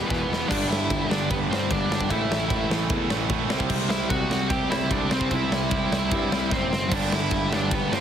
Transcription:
Already playing: lead electric guitar G3 G4
0.06 distorted electric guitar E2 B2 E3, lead electric guitar B3 B4
0.10 picked electric bass E1, kick, snare
0.28 picked electric bass E1, distorted electric guitar E2 B2 E3
0.33 snare
0.48 picked electric bass G1, distorted electric guitar G2 D3 G3, lead electric guitar D4 D5, kick, crash
0.68 picked electric bass G1, lead electric guitar E4 E5
0.73 snare
0.90 picked electric bass G1, kick, ride
1.09 picked electric bass G1, overdriven electric guitar G2 D3 G3, lead electric guitar D4 D5, snare
1.30 picked electric bass G1, lead electric guitar B3 B4, kick, ride
1.49 picked electric bass G1, distorted electric guitar D3 G3, lead electric guitar C4 C5, snare
1.53 distorted electric guitar G2
1.67 picked electric bass G1, distorted electric guitar G2 D3, lead electric guitar D4, kick, ride
1.71 distorted electric guitar G3, lead electric guitar D5
1.91 picked electric bass G1, snare
2.01 kick
2.08 picked electric bass A1, distorted electric guitar A2 E3 A3, lead electric guitar E4 E5, kick, ride
2.30 picked electric bass A1, snare
2.50 picked electric bass A1, kick, ride
2.69 picked electric bass A1, overdriven electric guitar A2 E3 A3, snare
2.90 picked electric bass E2, kick, ride
3.10 picked electric bass A1, distorted electric guitar A2 E3 A3, snare
3.29 picked electric bass A1, distorted electric guitar A2 E3 A3, kick, ride
3.49 picked electric bass C2, distorted electric guitar C3 G3 C4, snare
3.60 kick
3.70 picked electric bass C2, kick, crash
3.89 picked electric bass C2, lead electric guitar E4 E5, snare
4.09 picked electric bass C2, overdriven electric guitar C3 G3, lead electric guitar F#4 F#5, kick, ride
4.13 overdriven electric guitar C4
4.30 picked electric bass C2, snare
4.49 picked electric bass C2, distorted electric guitar C3 G3, lead electric guitar G4 G5, kick, ride
4.53 distorted electric guitar C4
4.70 picked electric bass C2, distorted electric guitar C3 G3 C4, lead electric guitar E4 E5, snare
4.91 picked electric bass C2, lead electric guitar D4 D5, kick, ride
5.10 picked electric bass C2, distorted electric guitar C3 G3 C4, lead electric guitar C4, snare
5.14 lead electric guitar C5
5.21 kick
5.31 picked electric bass C2, lead electric guitar E4, kick, ride
5.36 lead electric guitar E5
5.51 picked electric bass C2, snare
5.70 picked electric bass C2, overdriven electric guitar C3 G3 C4, kick, ride
5.91 picked electric bass C2, snare
6.10 picked electric bass G2, distorted electric guitar C3 G3, kick, ride
6.14 distorted electric guitar C4
6.29 picked electric bass C2, distorted electric guitar C3 G3 C4, snare
6.51 picked electric bass F#1, lead electric guitar C4, kick, snare
6.56 lead electric guitar C5
6.73 snare
6.89 picked electric bass G1, distorted electric guitar G2 D3 G3, lead electric guitar D4, kick, crash
6.96 lead electric guitar D5
7.11 picked electric bass G1, lead electric guitar E4, snare
7.15 lead electric guitar E5
7.31 picked electric bass G1, kick, ride
7.50 picked electric bass G1, overdriven electric guitar G2 D3 G3, lead electric guitar D4, snare
7.55 lead electric guitar D5
7.71 picked electric bass G1, lead electric guitar B3 B4, kick, ride
7.89 picked electric bass G1, distorted electric guitar D3 G3, snare
7.93 distorted electric guitar G2, lead electric guitar C4 C5

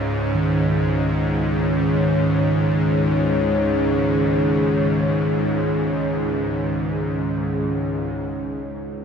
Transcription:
Already playing: synth drone C#2 G#2, ambient pad C#4 G#4 C#5
0.35 singing bowl D#3
8.66 singing bowl G#3, ambient pad C#4

